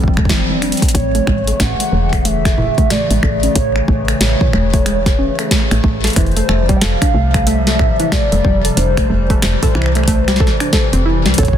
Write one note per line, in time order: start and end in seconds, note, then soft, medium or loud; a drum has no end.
0.00 0.73 F1 medium
0.00 0.91 F3 medium
0.00 0.91 G3 medium
0.00 0.91 C4 medium
0.00 0.16 A4 medium
0.00 kick medium
0.08 kick medium
0.17 0.26 A3 medium
0.17 finger snap medium
0.17 kick medium
0.19 kick medium
0.25 kick medium
0.29 0.38 E3 loud
0.29 kick loud
0.29 snare loud
0.29 closed hi-hat soft
0.50 0.58 E3 medium
0.62 0.76 D4 medium
0.62 finger snap medium
0.62 closed hi-hat medium
0.72 closed hi-hat medium
0.77 closed hi-hat medium
0.82 0.93 A3 medium
0.82 kick loud
0.82 closed hi-hat medium
0.85 closed hi-hat soft
0.89 closed hi-hat medium
0.92 1.20 A1 loud
0.92 6.12 C#3 medium
0.92 6.12 E3 medium
0.92 1.09 A3 medium
0.92 6.12 A3 medium
0.92 1.61 C#5 loud
0.92 kick loud
0.92 closed hi-hat soft
0.95 closed hi-hat medium
1.15 1.24 A3 loud
1.15 closed hi-hat soft
1.27 1.53 A1 medium
1.27 1.41 G#3 loud
1.27 finger snap medium
1.27 kick loud
1.47 1.56 A4 medium
1.47 closed hi-hat soft
1.60 1.75 A1 loud
1.60 1.68 C#4 medium
1.60 2.27 F#5 loud
1.60 finger snap medium
1.60 kick loud
1.60 snare loud
1.60 closed hi-hat medium
1.80 1.89 A3 medium
1.80 closed hi-hat medium
1.92 2.69 E1 medium
1.92 2.12 A3 medium
2.13 2.18 A3 loud
2.13 finger snap medium
2.13 kick loud
2.13 closed hi-hat soft
2.25 2.39 A3 medium
2.25 2.92 E5 loud
2.25 closed hi-hat medium
2.45 2.50 A4 medium
2.45 finger snap medium
2.45 kick loud
2.45 snare medium
2.45 closed hi-hat soft
2.58 2.72 E3 loud
2.58 mid tom loud
2.78 2.87 A3 medium
2.78 kick loud
2.78 closed hi-hat soft
2.90 3.04 A3 loud
2.90 3.55 D5 loud
2.90 finger snap medium
2.90 snare loud
2.90 closed hi-hat medium
2.90 mid tom medium
3.10 3.19 A1 medium
3.10 3.19 G#3 loud
3.10 closed hi-hat soft
3.23 3.49 A1 medium
3.23 3.37 A4 medium
3.23 finger snap medium
3.23 kick loud
3.43 3.48 C#4 medium
3.43 closed hi-hat medium
3.56 3.81 A1 loud
3.56 3.70 A3 medium
3.56 4.17 C#5 loud
3.56 kick loud
3.56 closed hi-hat medium
3.76 3.87 A3 medium
3.76 finger snap soft
3.88 4.14 A1 medium
3.88 3.97 A3 loud
3.88 kick loud
4.08 4.17 A3 medium
4.08 finger snap medium
4.08 closed hi-hat soft
4.21 4.35 A1 loud
4.21 4.29 A4 medium
4.21 5.80 C#5 medium
4.21 snare loud
4.21 closed hi-hat medium
4.41 4.50 E3 loud
4.41 kick loud
4.47 mid tom medium
4.53 5.30 E1 loud
4.53 4.67 A3 medium
4.53 finger snap medium
4.74 4.82 A3 loud
4.74 kick loud
4.74 closed hi-hat soft
4.86 5.00 G#3 loud
4.86 finger snap medium
4.86 closed hi-hat medium
5.06 5.15 A4 medium
5.06 kick loud
5.06 snare medium
5.06 closed hi-hat soft
5.19 5.27 C#4 medium
5.39 5.47 A3 medium
5.39 finger snap medium
5.39 closed hi-hat soft
5.51 5.70 A3 medium
5.51 kick loud
5.51 snare loud
5.51 closed hi-hat medium
5.71 5.80 A1 medium
5.71 5.77 A3 loud
5.71 finger snap medium
5.71 closed hi-hat soft
5.84 6.10 A1 medium
5.84 5.98 A3 medium
5.84 kick loud
6.04 6.09 A4 medium
6.04 snare medium
6.04 closed hi-hat medium
6.07 closed hi-hat soft
6.10 closed hi-hat soft
6.13 finger snap soft
6.13 closed hi-hat soft
6.16 6.42 F1 loud
6.16 11.34 C3 medium
6.16 6.30 E3 loud
6.16 8.75 F3 medium
6.16 11.34 G3 medium
6.16 6.78 C5 loud
6.16 kick loud
6.16 closed hi-hat medium
6.26 closed hi-hat soft
6.31 closed hi-hat soft
6.37 6.45 A3 medium
6.37 closed hi-hat soft
6.49 6.75 F1 medium
6.49 6.63 A3 loud
6.49 finger snap medium
6.69 6.78 G3 loud
6.69 kick loud
6.69 closed hi-hat soft
6.76 6.83 G5 medium
6.81 6.96 F1 loud
6.81 6.96 A4 medium
6.81 7.48 F5 loud
6.81 snare loud
6.81 closed hi-hat medium
7.02 7.07 D4 medium
7.02 finger snap medium
7.02 kick loud
7.02 closed hi-hat medium
7.14 7.91 C2 medium
7.14 7.28 A3 medium
7.34 7.46 A3 medium
7.34 finger snap medium
7.34 kick loud
7.34 closed hi-hat soft
7.47 7.55 A3 loud
7.47 8.13 E5 loud
7.47 closed hi-hat medium
7.67 7.76 A3 medium
7.67 snare medium
7.67 closed hi-hat soft
7.79 7.88 A4 medium
7.79 finger snap medium
7.79 kick loud
7.79 mid tom medium
8.00 8.08 E3 loud
8.00 closed hi-hat soft
8.12 8.26 A3 medium
8.12 8.77 D5 loud
8.12 finger snap medium
8.12 kick loud
8.12 snare loud
8.12 mid tom medium
8.32 8.41 F1 medium
8.32 8.41 A3 loud
8.32 closed hi-hat soft
8.45 8.70 F1 medium
8.45 8.59 G3 loud
8.45 kick loud
8.65 8.74 A4 medium
8.65 closed hi-hat medium
8.77 9.03 F1 loud
8.77 11.58 E3 medium
8.77 8.86 D4 medium
8.77 9.38 C5 loud
8.77 closed hi-hat medium
8.97 9.06 A3 medium
8.97 finger snap medium
8.97 kick loud
8.97 closed hi-hat soft
9.10 9.36 F1 medium
9.10 9.29 A3 medium
9.30 9.35 A3 loud
9.30 kick loud
9.30 closed hi-hat soft
9.42 9.57 F1 loud
9.42 9.57 A3 medium
9.42 11.02 C5 medium
9.42 finger snap soft
9.42 snare loud
9.42 closed hi-hat medium
9.63 9.68 A4 medium
9.63 kick loud
9.63 closed hi-hat medium
9.63 mid tom medium
9.75 10.52 C2 loud
9.75 9.89 E3 loud
9.75 finger snap medium
9.82 finger snap medium
9.86 finger snap soft
9.95 10.04 A3 medium
9.95 finger snap soft
9.95 closed hi-hat soft
10.03 finger snap soft
10.08 10.22 A3 loud
10.08 kick loud
10.08 closed hi-hat medium
10.28 10.37 G3 loud
10.28 finger snap soft
10.28 snare medium
10.28 closed hi-hat soft
10.36 snare medium
10.40 10.54 A4 medium
10.40 kick loud
10.47 snare soft
10.60 10.69 D4 medium
10.60 finger snap medium
10.60 closed hi-hat soft
10.73 10.87 A4 loud
10.73 kick loud
10.73 snare loud
10.93 11.27 F1 medium
10.93 11.02 C4 medium
10.93 closed hi-hat soft
11.06 11.20 E4 medium
11.26 11.35 C2 medium
11.26 11.34 G3 medium
11.26 snare medium
11.26 closed hi-hat soft
11.34 closed hi-hat soft
11.38 11.58 A1 loud
11.38 11.58 C#3 medium
11.38 11.58 A3 medium
11.38 11.47 A4 medium
11.38 11.58 C#5 loud
11.38 kick loud
11.38 closed hi-hat medium
11.43 kick medium
11.43 closed hi-hat soft
11.48 kick medium
11.53 kick medium